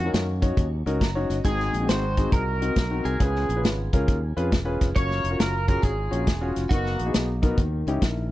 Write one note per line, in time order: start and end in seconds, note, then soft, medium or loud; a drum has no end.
0.00 0.12 F2 medium
0.00 0.38 D#3 medium
0.00 0.54 A#3 medium
0.00 0.54 C#4 medium
0.00 0.10 F#4 loud
0.00 0.11 F#4 loud
0.05 0.26 C#4 medium
0.05 0.26 D#4 medium
0.05 0.26 F#4 medium
0.05 0.26 A#4 medium
0.14 0.51 F#2 medium
0.14 snare loud
0.14 closed hi-hat medium
0.42 0.64 C#4 medium
0.42 0.65 D#4 medium
0.42 0.65 F#4 medium
0.42 0.65 C#5 medium
0.42 kick medium
0.42 closed hi-hat medium
0.57 0.82 D#2 medium
0.57 kick loud
0.57 closed hi-hat medium
0.86 0.99 C#2 medium
0.86 1.01 C#4 medium
0.86 1.00 D#4 medium
0.86 1.01 F#4 medium
0.86 1.00 A#4 medium
0.86 closed hi-hat medium
1.01 1.26 F#1 medium
1.01 1.28 A#5 medium
1.01 kick medium
1.01 snare medium
1.01 closed hi-hat medium
1.15 1.36 C#4 medium
1.15 1.37 D#4 medium
1.15 1.37 F#4 medium
1.15 1.36 C#5 medium
1.30 1.43 G1 medium
1.30 1.44 D#5 medium
1.30 snare soft
1.30 closed hi-hat medium
1.45 1.69 G#1 loud
1.45 2.13 G#2 medium
1.45 2.28 C4 medium
1.45 1.72 C4 medium
1.45 1.72 D#4 medium
1.45 1.89 D#4 medium
1.45 1.72 F#4 medium
1.45 1.72 G#4 medium
1.45 1.90 G#4 medium
1.45 1.87 G#4 medium
1.45 kick loud
1.45 closed hi-hat medium
1.60 snare soft
1.73 1.86 A#1 medium
1.73 closed hi-hat medium
1.81 2.02 C4 medium
1.81 2.01 D#4 medium
1.81 2.01 F#4 medium
1.81 2.01 G#4 medium
1.89 2.26 G#1 medium
1.89 2.34 D#4 medium
1.89 2.33 F#4 medium
1.89 2.32 C5 medium
1.89 2.34 C5 medium
1.89 snare loud
1.89 closed hi-hat medium
2.17 2.40 C4 medium
2.17 2.40 D#4 medium
2.17 2.40 F#4 medium
2.17 2.40 G#4 medium
2.17 kick medium
2.17 closed hi-hat medium
2.32 2.69 C2 medium
2.32 3.17 D#4 medium
2.32 3.17 F#4 medium
2.32 3.07 A#4 medium
2.32 3.17 A#4 medium
2.32 kick medium
2.32 closed hi-hat medium
2.61 2.76 C4 medium
2.61 2.76 D#4 medium
2.61 2.76 F#4 medium
2.61 2.76 A#4 medium
2.61 closed hi-hat medium
2.76 3.01 B1 medium
2.76 kick medium
2.76 snare medium
2.76 closed hi-hat medium
2.91 3.12 C4 medium
2.91 3.12 D#4 medium
2.91 3.12 F#4 medium
2.91 3.12 A#4 medium
3.05 3.18 C2 medium
3.05 3.60 G#4 medium
3.05 closed hi-hat medium
3.19 3.45 C#2 medium
3.19 3.88 C#3 medium
3.19 4.04 B3 medium
3.19 3.47 C#4 medium
3.19 3.47 F4 medium
3.19 4.04 F4 medium
3.19 3.47 G#4 medium
3.19 3.64 G#4 medium
3.19 3.47 B4 medium
3.19 kick medium
3.19 closed hi-hat medium
3.35 snare soft
3.49 3.62 A#1 medium
3.49 closed hi-hat medium
3.56 3.77 C#4 medium
3.56 3.77 F4 medium
3.56 3.76 G#4 medium
3.56 3.77 B4 medium
3.64 3.88 G#1 medium
3.64 snare loud
3.64 closed hi-hat medium
3.93 4.05 C#2 medium
3.93 4.16 C#4 medium
3.93 4.16 F4 medium
3.93 4.16 G#4 medium
3.93 4.16 A#4 medium
3.93 kick medium
3.93 closed hi-hat medium
4.08 4.32 D#2 medium
4.08 kick loud
4.08 closed hi-hat medium
4.37 4.54 F2 medium
4.37 4.51 C#4 medium
4.37 4.51 F4 medium
4.37 4.51 G#4 medium
4.37 4.51 B4 medium
4.37 closed hi-hat medium
4.52 4.77 E1 medium
4.52 kick medium
4.52 snare medium
4.52 closed hi-hat medium
4.65 4.87 C#4 medium
4.65 4.87 F4 medium
4.65 4.87 G#4 medium
4.65 4.87 B4 medium
4.81 4.94 F1 medium
4.81 kick medium
4.81 snare soft
4.81 closed hi-hat medium
4.95 5.20 F#1 loud
4.95 5.23 C#4 medium
4.95 5.22 F4 medium
4.95 5.80 F4 medium
4.95 5.22 F#4 medium
4.95 5.22 A#4 medium
4.95 5.38 A#4 medium
4.95 5.40 C#5 loud
4.95 5.36 C#5 loud
4.95 kick medium
4.95 closed hi-hat medium
5.11 snare soft
5.24 5.37 F1 medium
5.24 closed hi-hat medium
5.30 5.51 C#4 medium
5.30 5.51 F4 medium
5.30 5.52 F#4 medium
5.30 5.51 A#4 medium
5.39 5.77 F#1 medium
5.39 5.67 A#4 medium
5.39 5.68 A#4 medium
5.39 snare loud
5.39 closed hi-hat medium
5.68 5.90 C#4 medium
5.68 5.91 F4 medium
5.68 5.91 F#4 medium
5.68 5.91 G#4 medium
5.68 5.82 A#4 medium
5.68 5.83 A#4 medium
5.68 kick medium
5.68 closed hi-hat medium
5.82 6.07 G#1 medium
5.82 6.67 C#4 soft
5.82 6.67 F4 medium
5.82 6.51 G#4 medium
5.82 6.55 G#4 medium
5.82 kick medium
5.82 closed hi-hat medium
6.11 6.25 A#1 medium
6.11 6.26 C#4 medium
6.11 6.26 F4 medium
6.11 6.25 F#4 medium
6.11 6.26 C#5 medium
6.11 closed hi-hat medium
6.27 6.51 E1 medium
6.27 kick medium
6.27 snare medium
6.27 closed hi-hat medium
6.41 6.63 C#4 medium
6.41 6.62 F4 medium
6.41 6.62 F#4 medium
6.41 6.62 C#5 medium
6.56 6.69 F1 medium
6.56 snare soft
6.56 closed hi-hat medium
6.69 6.95 F#1 loud
6.69 7.55 A#3 medium
6.69 6.98 B3 medium
6.69 6.98 D#4 medium
6.69 7.55 D#4 medium
6.69 7.11 F#4 medium
6.69 6.97 F#4 medium
6.69 7.12 F#4 loud
6.69 6.98 A#4 medium
6.69 kick medium
6.69 closed hi-hat medium
6.86 snare soft
6.99 7.12 A#1 medium
6.99 closed hi-hat medium
7.06 7.27 B3 medium
7.06 7.27 D#4 medium
7.06 7.27 F#4 medium
7.06 7.27 G#4 medium
7.14 7.52 B1 medium
7.14 snare loud
7.14 closed hi-hat medium
7.42 7.58 B3 medium
7.42 7.58 D#4 medium
7.42 7.58 F#4 medium
7.42 7.58 A#4 medium
7.42 kick medium
7.42 closed hi-hat medium
7.57 7.82 D#2 medium
7.57 8.27 D#3 medium
7.57 kick loud
7.57 closed hi-hat medium
7.87 8.00 C#2 medium
7.87 8.02 C#4 medium
7.87 8.02 D#4 medium
7.87 8.02 E4 medium
7.87 8.02 G4 medium
7.87 closed hi-hat medium
8.02 8.31 A#1 medium
8.02 8.30 E4 medium
8.02 8.30 A#4 medium
8.02 kick medium
8.02 snare loud
8.02 closed hi-hat medium